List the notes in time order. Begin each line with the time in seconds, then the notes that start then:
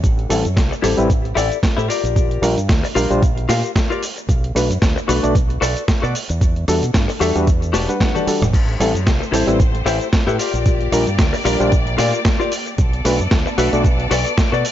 0.04 A1, kick, closed hi-hat, cabasa
0.19 closed hi-hat
0.29 A1 G3 C4 E4 A4, cross-stick, open hi-hat, cabasa
0.45 F#2, closed hi-hat, cabasa
0.56 C2, muted clean electric guitar stroke, kick, snare, closed hi-hat, cabasa
0.71 muted clean electric guitar stroke, cabasa
0.82 A1 G3 C4 E4 G4 A4 C5, cross-stick, open hi-hat, cabasa
0.97 A1 G3 C4 E4 B4, closed hi-hat, cabasa
1.10 kick, closed hi-hat, cabasa
1.25 closed hi-hat
1.35 A1 E4 G4 A4 D5, cross-stick, open hi-hat, cabasa
1.52 closed hi-hat, cabasa
1.63 kick, snare, closed hi-hat, cabasa
1.77 A2 E4 G4 A4 C5, cabasa
1.88 F4 G4 A#4 D5, open hi-hat, cabasa
2.04 A#1, closed hi-hat, cabasa
2.16 kick, closed hi-hat, cabasa
2.31 closed hi-hat
2.42 A#1 G3 D4 F4 A#4, cross-stick, open hi-hat, cabasa
2.57 G2, closed hi-hat, cabasa
2.69 D2, muted clean electric guitar stroke, kick, snare, closed hi-hat, cabasa
2.83 muted clean electric guitar stroke, open hi-hat, cabasa
2.95 A#1 G3 D4 F4 G4 A#4 F5, open hi-hat, cabasa
3.10 A#1 G3 D4 F4 C5, closed hi-hat, cabasa
3.23 kick, closed hi-hat, cabasa
3.37 closed hi-hat
3.49 A#2 F4 G4 A#4 F5, snare, open hi-hat, cabasa
3.64 closed hi-hat, cabasa
3.76 kick, snare, closed hi-hat, cabasa
3.90 F4 G4 A#4 D5, cabasa
4.03 open hi-hat, cabasa
4.17 muted clean electric guitar stroke, closed hi-hat, cabasa
4.29 B1, kick, closed hi-hat, cabasa
4.44 closed hi-hat
4.55 B1 A3 D4 F#4 B4, cross-stick, open hi-hat, cabasa
4.70 F#2, closed hi-hat, cabasa
4.82 D2, muted clean electric guitar stroke, kick, snare, closed hi-hat, cabasa
4.96 muted clean electric guitar stroke, cabasa
5.08 B1 A3 D4 F#4 A4 B4 D5, cross-stick, open hi-hat, cabasa
5.23 B1 A3 D4 F#4 D5, closed hi-hat, cabasa
5.35 kick, closed hi-hat, cabasa
5.50 closed hi-hat
5.61 B1 F#4 A4 B4 D5, cross-stick, open hi-hat, cabasa
5.77 closed hi-hat, cabasa
5.88 kick, snare, closed hi-hat, cabasa
6.02 B2 F#4 A4 B4 D5, cabasa
6.15 open hi-hat, cabasa
6.29 E2, muted clean electric guitar stroke, closed hi-hat, cabasa
6.41 kick, closed hi-hat, cabasa
6.56 closed hi-hat
6.68 E2 G3 D4 F#4 A4, cross-stick, open hi-hat, cabasa
6.82 B2, closed hi-hat, cabasa
6.94 G2, muted clean electric guitar stroke, kick, snare, closed hi-hat, cabasa
7.08 muted clean electric guitar stroke, open hi-hat, cabasa
7.20 E2 G3 D4 F#4 G4 A4 E5, cross-stick, open hi-hat, cabasa
7.35 E2 G3 D4 F#4 B4, closed hi-hat, cabasa
7.47 kick, closed hi-hat, cabasa
7.62 closed hi-hat, cabasa
7.73 E1 F#4 G4 A4 B4 D5, snare, open hi-hat, cabasa
7.88 G3 D4 B4 F#5, closed hi-hat, cabasa
8.00 F#5, kick, snare, closed hi-hat, high tom, cabasa
8.15 F#4 G4 A4 D5, closed hi-hat, high tom, cabasa
8.27 G3 D4 F#4 A4, muted fingered electric bass stroke, open hi-hat, cabasa
8.41 E1, muted clean electric guitar stroke, cross-stick, closed hi-hat, mid tom, cabasa
8.53 A1 A3 G4 C5, kick, closed hi-hat, crash, cabasa
8.69 closed hi-hat
8.80 A1 G3 C4 E4 A4, cross-stick, open hi-hat, cabasa
8.94 F#2, closed hi-hat, cabasa
9.06 C2, muted clean electric guitar stroke, kick, snare, closed hi-hat, cabasa
9.20 muted clean electric guitar stroke, cabasa
9.32 A1 G3 C4 E4 G4 A4 C5, cross-stick, open hi-hat, cabasa
9.47 A1 G3 C4 E4 B4, closed hi-hat, cabasa
9.60 kick, closed hi-hat, cabasa
9.75 closed hi-hat
9.85 A1 E4 G4 A4 C5, cross-stick, open hi-hat, cabasa
10.01 closed hi-hat, cabasa
10.13 kick, snare, closed hi-hat, cabasa
10.27 A2 E4 G4 A4 B4, cabasa
10.39 A#3 F4 G4 A#4 D5, open hi-hat, cabasa
10.53 A#1, closed hi-hat, cabasa
10.66 kick, closed hi-hat, cabasa
10.81 closed hi-hat
10.92 A#1 G3 D4 F4 A#4, cross-stick, open hi-hat, cabasa
11.07 G2, closed hi-hat, cabasa
11.18 D2, muted clean electric guitar stroke, kick, snare, closed hi-hat, cabasa
11.33 muted clean electric guitar stroke, open hi-hat, cabasa
11.45 A#1 G3 D4 F4 G4 A#4 D5, cross-stick, open hi-hat, cabasa
11.60 A#1 G3 D4 F4 C5, closed hi-hat, cabasa
11.72 kick, closed hi-hat, cabasa
11.87 closed hi-hat
11.98 A#2 F4 G4 A#4 D5, snare, open hi-hat, cabasa
12.14 closed hi-hat, cabasa
12.25 kick, snare, closed hi-hat, cabasa
12.40 F4 G4 A#4 D5, cabasa
12.52 open hi-hat, cabasa
12.66 muted clean electric guitar stroke, closed hi-hat, cabasa
12.78 B1 B3 A4 D5, kick, closed hi-hat, cabasa
12.93 closed hi-hat
13.05 B1 A3 D4 F#4 B4, cross-stick, open hi-hat, cabasa
13.20 F#2, closed hi-hat, cabasa
13.31 D2, muted clean electric guitar stroke, kick, snare, closed hi-hat, cabasa
13.46 muted clean electric guitar stroke, cabasa
13.58 B1 A3 D4 F#4 A4 B4 E5, cross-stick, open hi-hat, cabasa
13.73 B1 A3 D4 F#4 D5, closed hi-hat, cabasa
13.85 kick, closed hi-hat, cabasa
14.00 closed hi-hat
14.11 B1 F#4 A4 B4 D5, cross-stick, open hi-hat, cabasa
14.26 closed hi-hat, cabasa
14.38 kick, snare, closed hi-hat, cabasa
14.52 B2 F#4 A4 B4 D5, cabasa
14.65 open hi-hat, cabasa